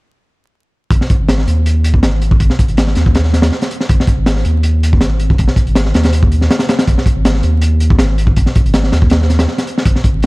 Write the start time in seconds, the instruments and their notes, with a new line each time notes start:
0.91 sub bass G#1, kick, closed hi-hat
1.01 snare
1.10 kick, closed hi-hat
1.20 sub bass G#1
1.28 snare, closed hi-hat
1.38 snare
1.47 sub bass D#2, closed hi-hat
1.66 closed hi-hat
1.84 closed hi-hat
1.94 kick
2.03 sub bass G#1, snare, closed hi-hat
2.22 closed hi-hat
2.31 kick
2.40 sub bass G#1, kick, closed hi-hat
2.50 snare
2.59 kick, closed hi-hat
2.68 sub bass G#1, closed hi-hat
2.77 snare, closed hi-hat
2.87 snare
2.95 sub bass D#2, snare, closed hi-hat
3.06 kick
3.15 snare, closed hi-hat
3.25 snare
3.33 snare, closed hi-hat
3.42 snare, closed hi-hat
3.52 snare
3.62 snare, closed hi-hat
3.71 closed hi-hat
3.81 snare
3.89 sub bass G#1, kick, closed hi-hat
4.00 snare
4.07 kick, closed hi-hat
4.18 sub bass G#1
4.26 snare, closed hi-hat
4.36 snare
4.45 sub bass D#2, closed hi-hat
4.63 closed hi-hat
4.83 closed hi-hat
4.93 kick
5.01 sub bass G#1, snare, closed hi-hat
5.20 closed hi-hat
5.30 kick
5.38 sub bass G#1, kick, closed hi-hat
5.48 snare
5.56 kick, closed hi-hat
5.67 sub bass G#1, closed hi-hat
5.75 snare, closed hi-hat
5.85 snare
5.94 sub bass D#2, snare, closed hi-hat
6.03 snare, closed hi-hat
6.13 closed hi-hat
6.23 kick
6.32 closed hi-hat
6.41 snare
6.50 snare, closed hi-hat
6.59 snare, closed hi-hat
6.69 snare, closed hi-hat
6.79 snare, closed hi-hat
6.87 sub bass G#1, kick, closed hi-hat
6.98 snare
7.06 kick, closed hi-hat
7.16 sub bass G#1
7.25 snare, closed hi-hat
7.34 snare
7.43 sub bass D#2, closed hi-hat
7.62 closed hi-hat
7.80 closed hi-hat
7.90 kick
7.99 sub bass G#1, snare, closed hi-hat
8.18 closed hi-hat
8.27 kick
8.36 sub bass G#1, kick, closed hi-hat
8.46 snare
8.55 kick, closed hi-hat
8.65 sub bass G#1, closed hi-hat
8.74 snare, closed hi-hat
8.84 snare
8.92 sub bass D#2, snare, closed hi-hat
9.02 kick
9.10 snare, closed hi-hat
9.22 snare
9.30 snare, closed hi-hat
9.39 snare, closed hi-hat
9.48 snare
9.58 snare, closed hi-hat
9.67 closed hi-hat
9.78 snare
9.85 sub bass G#1, kick, closed hi-hat
9.96 snare
10.04 kick, closed hi-hat
10.14 sub bass G#1
10.22 closed hi-hat